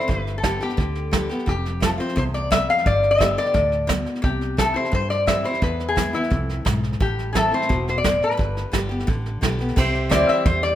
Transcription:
Already playing: resonator guitar played with a steel bar C5
0.00 snare
0.08 fingered electric bass G1, steel-string acoustic guitar G2, resonator guitar played with a steel bar B4, kick, snare
0.27 snare
0.38 resonator guitar played with a steel bar A4
0.43 steel-string acoustic guitar D3 G3 B3 G4, kick, snare, hi-hat pedal
0.61 steel-string acoustic guitar B3 G4, resonator guitar played with a steel bar G4, snare
0.70 snare
0.77 fingered electric bass D2, steel-string acoustic guitar D3, kick, snare
0.95 snare
1.11 steel-string acoustic guitar D3 G3 B3 G4, kick, snare, hi-hat pedal
1.29 steel-string acoustic guitar B3 G4, snare
1.39 snare
1.46 fingered electric bass F1, steel-string acoustic guitar F2, resonator guitar played with a steel bar G4, kick, snare
1.65 snare
1.80 steel-string acoustic guitar F3 A3 C4 F4, resonator guitar played with a steel bar A4, kick, snare, hi-hat pedal
1.98 steel-string acoustic guitar C4 F4, resonator guitar played with a steel bar C5, snare
2.09 snare
2.16 fingered electric bass C2, steel-string acoustic guitar E2, resonator guitar played with a steel bar C5, kick, snare
2.34 resonator guitar played with a steel bar D5, snare
2.51 steel-string acoustic guitar F2, resonator guitar played with a steel bar E5, kick, snare, hi-hat pedal
2.69 resonator guitar played with a steel bar F5, snare
2.78 snare
2.86 fingered electric bass G1, steel-string acoustic guitar G2, resonator guitar played with a steel bar D5, kick, snare
3.03 snare
3.11 resonator guitar played with a steel bar E5
3.18 steel-string acoustic guitar D3 G3 B3 G4, kick, snare, hi-hat pedal
3.37 resonator guitar played with a steel bar D5, snare
3.46 snare
3.54 fingered electric bass D2, steel-string acoustic guitar A2, kick, snare
3.72 snare
3.87 steel-string acoustic guitar B2, kick, snare, hi-hat pedal
4.06 snare
4.15 snare
4.22 fingered electric bass C2, steel-string acoustic guitar C3, resonator guitar played with a steel bar G4, kick, snare
4.41 snare
4.57 steel-string acoustic guitar E3 G3 C4 E4, resonator guitar played with a steel bar A4, kick, snare, hi-hat pedal
4.74 steel-string acoustic guitar C4 E4, resonator guitar played with a steel bar C5, snare
4.85 snare
4.92 steel-string acoustic guitar G2, fingered electric bass G2, resonator guitar played with a steel bar C5, kick, snare
5.10 resonator guitar played with a steel bar D5, snare
5.26 steel-string acoustic guitar E3 G3 C4 E4, resonator guitar played with a steel bar E5, kick, snare, hi-hat pedal
5.44 steel-string acoustic guitar C4 E4, resonator guitar played with a steel bar C5, snare
5.54 snare
5.62 steel-string acoustic guitar E2, fingered electric bass E2, resonator guitar played with a steel bar B4, kick, snare
5.80 snare
5.88 resonator guitar played with a steel bar G#4
5.96 steel-string acoustic guitar D3 G#3 B3 E4, kick, snare, hi-hat pedal
6.13 steel-string acoustic guitar B3 E4, resonator guitar played with a steel bar E4, snare
6.23 snare
6.30 fingered electric bass C2, steel-string acoustic guitar F2, kick, snare
6.49 snare
6.65 fingered electric bass B1, steel-string acoustic guitar G#2, kick, snare, hi-hat pedal
6.83 snare
6.92 snare
7.00 fingered electric bass A1, steel-string acoustic guitar A2, resonator guitar played with a steel bar G4, kick, snare
7.19 snare
7.33 steel-string acoustic guitar E3 A3 C4 E4, resonator guitar played with a steel bar G#4 A4, kick, snare, hi-hat pedal
7.52 steel-string acoustic guitar C4 E4, resonator guitar played with a steel bar C5, snare
7.62 snare
7.69 fingered electric bass E1, steel-string acoustic guitar B2, kick, snare
7.88 resonator guitar played with a steel bar C5, snare
7.98 resonator guitar played with a steel bar D5
8.04 steel-string acoustic guitar A2, kick, snare, hi-hat pedal
8.22 resonator guitar played with a steel bar B4, snare
8.31 snare
8.37 fingered electric bass G1, steel-string acoustic guitar G2, kick, snare
8.57 snare
8.72 fingered electric bass G1, steel-string acoustic guitar D3 G3 B3 G4, kick, snare, hi-hat pedal
8.89 steel-string acoustic guitar B3 G4, snare
9.00 snare
9.07 fingered electric bass A1, steel-string acoustic guitar D3, kick, snare
9.26 snare
9.41 fingered electric bass B1, steel-string acoustic guitar D3 G3 B3 G4, kick, snare, hi-hat pedal
9.59 steel-string acoustic guitar B3 G4, snare
9.68 snare
9.76 fingered electric bass C2, steel-string acoustic guitar C3, pedal steel guitar G4 C5, resonator guitar played with a steel bar C5, kick, snare, crash
9.80 pedal steel guitar E5
9.94 snare
10.09 fingered electric bass D2, steel-string acoustic guitar E3 G3 C4 E4, grand piano E4 G4 C5, resonator guitar played with a steel bar D5, kick, snare, hi-hat pedal
10.29 resonator guitar played with a steel bar E5, muted fingered electric bass stroke, snare
10.45 fingered electric bass E2, steel-string acoustic guitar G2, resonator guitar played with a steel bar C5, kick, snare
10.63 resonator guitar played with a steel bar D5, snare

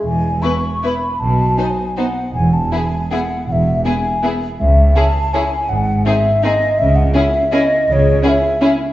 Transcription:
0.04 double bass section E1, cello section E2, flute G#5
0.43 viola section B3, violin section E4 B4, flute C#6
0.83 viola section B3, violin section E4 B4, flute B5 C#6
1.19 double bass section B1, cello section B2, flute A5
1.57 viola section B3, violin section D#4 C5, flute G#5
1.97 viola section B3, violin section D#4 C5, flute F#5
2.34 double bass section E1, cello section E2, flute G#5
2.53 flute A5
2.71 viola section B3, violin section E4 G#4, flute B5
2.78 flute G#5
3.11 viola section B3, violin section E4 G#4, flute F#5
3.47 double bass section E1, cello section E2, flute F#5
3.52 flute E5
3.85 viola section B3, violin section E4 G#4, flute G#5
4.23 viola section B3, violin section E4 G#4
4.59 double bass section C#2, cello section C#2, flute E5
4.96 viola section C#4, violin section E4 G#4, flute A5
5.33 viola section C#4, violin section E4 G#4, flute G#5
5.69 double bass section G#1, cello section G#2, flute F#5
6.06 viola section C4, violin section D#4 G#4, flute E5
6.43 viola section C4, violin section D#4 G#4, flute D#5
6.78 double bass section C#2, cello section C#3, flute E5
6.96 flute F#5
7.15 viola section C#4, violin section E4 G#4, flute E5
7.52 viola section C#4, violin section E4 G#4, flute D#5
7.87 double bass section C#2, cello section C#3, flute D#5
7.93 flute C#5
8.23 viola section C#4, violin section E4 G#4, flute F#5
8.28 flute E5
8.61 viola section C#4, violin section E4 G#4

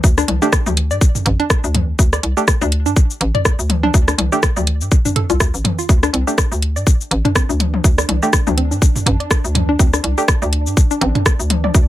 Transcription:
0.04 fm bass D2, kick, cabasa
0.18 synth arpeggio sound D4, cross-stick, cabasa
0.28 fm bass C2, closed hi-hat, high tom
0.42 synth stab A3 D4 G4, synth arpeggio sound D4, cabasa
0.52 kick, cross-stick, closed hi-hat, cabasa
0.66 fm bass D2, high tom, cabasa
0.77 closed hi-hat
0.91 fm bass G2, synth arpeggio sound D5, cabasa
1.01 kick, cabasa
1.15 mid tom, cabasa
1.26 fm bass A1, closed hi-hat, mid tom
1.40 synth arpeggio sound D4, closed hi-hat
1.50 kick, cross-stick, cabasa
1.64 fm bass D2, synth arpeggio sound D4, cabasa
1.75 closed hi-hat, mid tom, high tom
1.99 fm bass D2, kick, cabasa
2.13 synth arpeggio sound D5, cross-stick, cabasa
2.23 fm bass C2, closed hi-hat
2.37 synth stab A3 D4 G4, cabasa
2.48 kick, cross-stick, closed hi-hat, cabasa
2.61 fm bass D2, synth arpeggio sound D4, cabasa
2.72 closed hi-hat
2.86 fm bass G2, synth arpeggio sound D4, cabasa
2.96 kick, cabasa
3.10 cabasa
3.21 fm bass A1, closed hi-hat
3.35 synth arpeggio sound D5, closed hi-hat, mid tom
3.45 kick, cross-stick, cabasa
3.59 fm bass D2, cabasa
3.70 closed hi-hat, high tom
3.83 synth arpeggio sound D4, high tom
3.94 fm bass D2, kick, cabasa
4.08 synth arpeggio sound D4, cross-stick, cabasa
4.18 fm bass C2, closed hi-hat, high tom
4.32 synth stab A3 D4 G4, cabasa
4.43 kick, cross-stick, closed hi-hat, cabasa
4.56 fm bass D2, synth arpeggio sound D5, high tom, cabasa
4.67 closed hi-hat
4.81 fm bass G2, cabasa
4.91 kick, cabasa
5.05 synth arpeggio sound D4, mid tom, cabasa
5.16 synth arpeggio sound A4, closed hi-hat, mid tom
5.30 fm bass C2, synth arpeggio sound F4, closed hi-hat, cabasa
5.40 fm bass D2, kick, cross-stick, cabasa
5.54 fm bass A1, cabasa
5.65 closed hi-hat, mid tom, high tom
5.79 synth arpeggio sound F4, cabasa
5.89 fm bass D2, synth drone D4, kick, cabasa
6.03 synth arpeggio sound D4, cross-stick, cabasa
6.13 fm bass C2, synth arpeggio sound C4, closed hi-hat
6.27 synth stab A3 D4 G4, synth arpeggio sound D4, cabasa
6.38 kick, cross-stick, closed hi-hat, cabasa
6.52 fm bass D2, cabasa
6.62 closed hi-hat
6.76 fm bass G2, synth arpeggio sound D5, cabasa
6.87 kick, cabasa
7.01 cabasa
7.11 fm bass A1, closed hi-hat
7.25 synth arpeggio sound D4, closed hi-hat, mid tom
7.35 synth arpeggio sound C4, kick, cross-stick, cabasa
7.49 fm bass D2, synth arpeggio sound D4, cabasa
7.60 closed hi-hat, high tom
7.74 high tom
7.84 fm bass D2, kick, cabasa
7.98 synth arpeggio sound D5, cross-stick, cabasa
8.09 fm bass C2, closed hi-hat, high tom
8.23 synth stab A3 D4 G4, cabasa
8.33 kick, cross-stick, closed hi-hat, cabasa
8.47 fm bass D2, synth arpeggio sound D4, high tom, cabasa
8.57 synth arpeggio sound C4, closed hi-hat
8.71 fm bass G2, synth arpeggio sound D4, cabasa
8.82 kick, cabasa
8.96 mid tom, cabasa
9.06 fm bass A1, closed hi-hat, mid tom
9.20 synth arpeggio sound D5, closed hi-hat
9.31 kick, cross-stick, cabasa
9.44 fm bass D2, cabasa
9.55 closed hi-hat, mid tom, high tom
9.69 synth arpeggio sound D4
9.79 fm bass D2, synth arpeggio sound C4, kick, cabasa
9.93 synth arpeggio sound D4, cross-stick, cabasa
10.04 fm bass C2, closed hi-hat
10.18 synth stab A3 D4 G4, cabasa
10.28 kick, cross-stick, closed hi-hat, cabasa
10.42 fm bass D2, synth arpeggio sound D5, cabasa
10.53 closed hi-hat
10.66 fm bass G2, cabasa
10.77 kick, cabasa
10.91 synth arpeggio sound D4, cabasa
11.01 fm bass A1, synth arpeggio sound C4, closed hi-hat
11.15 synth arpeggio sound D4, closed hi-hat, mid tom
11.26 kick, cross-stick, cabasa
11.39 fm bass D2, cabasa
11.50 closed hi-hat, high tom
11.64 synth arpeggio sound D5, high tom
11.74 fm bass D2, kick, cabasa

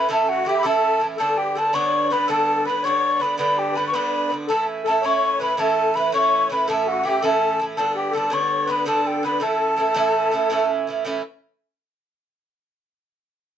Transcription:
Already playing: tin whistle B5
0.09 bouzouki A2 E3 C#4 E4, accordion A4, tin whistle A5
0.29 accordion F#4, tin whistle F#5
0.45 bouzouki A2 E3 C#4, accordion G4, tin whistle G5
0.49 bouzouki E4
0.58 accordion A4, tin whistle B5
0.63 bouzouki A2 E3 C#4 E4, tin whistle A5
1.00 bouzouki A2 E3 C#4 E4
1.17 bouzouki G2 D3 B3 D4, accordion A4, tin whistle A5
1.37 accordion G4, tin whistle G5
1.54 bouzouki G2 D3 B3 D4, accordion A4, tin whistle A5
1.73 bouzouki G2 D3 B3 D4, accordion C#5, tin whistle C#6
2.10 bouzouki G2 D3 B3 D4, accordion B4, tin whistle B5
2.27 bouzouki G2 D3 B3 D4, accordion A4
2.31 tin whistle A5
2.64 bouzouki G2 D3 B3, accordion B4, tin whistle B5
2.69 bouzouki D4
2.83 bouzouki G2 D3 B3, accordion C#5, tin whistle C#6
2.87 bouzouki D4
3.19 bouzouki G2 D3 B3, accordion B4, tin whistle B5
3.24 bouzouki D4
3.36 bouzouki G2 D3 B3, accordion B4, tin whistle B5
3.41 bouzouki D4
3.56 accordion G4, tin whistle G5
3.73 bouzouki G2, accordion B4, tin whistle B5
3.77 bouzouki D3 B3 D4
3.88 tin whistle C#6
3.92 bouzouki G2 D3 B3 D4, accordion B4, tin whistle B5
4.30 bouzouki G2 D3 B3 D4
4.47 bouzouki A2 E3 C#4, accordion A4, tin whistle A5
4.51 bouzouki E4
4.84 bouzouki A2 E3, accordion A4, tin whistle A5
4.88 bouzouki C#4 E4
5.01 bouzouki A2 E3 C#4, accordion C#5
5.05 bouzouki E4, tin whistle C#6
5.39 bouzouki A2 E3 C#4, accordion B4, tin whistle B5
5.43 bouzouki E4
5.57 bouzouki A2 E3 C#4 E4, accordion A4, tin whistle A5
5.94 bouzouki A2 E3 C#4 E4, accordion B4, tin whistle B5
6.12 bouzouki A2 E3 C#4 E4, accordion C#5, tin whistle C#6
6.50 bouzouki A2 E3 C#4 E4, accordion B4, tin whistle B5
6.67 bouzouki A2 E3 C#4 E4, accordion A4, tin whistle A5
6.86 accordion F#4, tin whistle F#5
7.03 bouzouki A2 E3 C#4 E4, accordion G4, tin whistle G5
7.21 bouzouki A2 E3 C#4 E4, accordion A4, tin whistle A5
7.59 bouzouki A2 E3 C#4 E4
7.76 bouzouki G2 D3 B3 D4, accordion A4, tin whistle A5
7.95 accordion G4, tin whistle G5
8.11 bouzouki G2 D3, accordion A4
8.16 bouzouki B3 D4, tin whistle A5
8.30 bouzouki G2 D3 B3 D4, accordion C#5, tin whistle C#6
8.66 bouzouki G2 D3 B3, accordion B4
8.71 bouzouki D4, tin whistle B5
8.84 bouzouki G2 D3 B3 D4, accordion A4, tin whistle A5
9.07 tin whistle G5
9.22 bouzouki G2 D3 B3 D4, accordion B4
9.26 tin whistle B5
9.40 bouzouki A2 E3 C#4 E4, accordion A4, tin whistle A5
9.76 bouzouki A2 E3 C#4 E4
9.94 bouzouki A2 E3 C#4 E4
10.31 bouzouki A2 E3 C#4 E4
10.50 bouzouki A2 E3 C#4 E4
10.87 bouzouki A2 E3 C#4 E4
11.05 bouzouki A2 E3 C#4 E4

